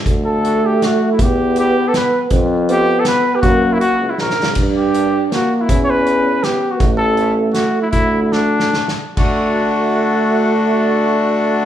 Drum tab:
CC |---------|---------|---------|---------|
HH |x--x--x--|x--x--x--|x--x--x--|x--x-----|
SD |------o--|------o--|------o--|------ooo|
BD |o--------|o--------|o--------|o--------|

CC |x--------|---------|---------|---------|
HH |x--x--x--|x--x--x--|x--x--x--|x--------|
SD |------o--|------o--|------o--|---o-ooo-|
BD |o--------|o--------|o--------|o--------|

CC |x--------|---------|
HH |---------|---------|
SD |---------|---------|
BD |o--------|---------|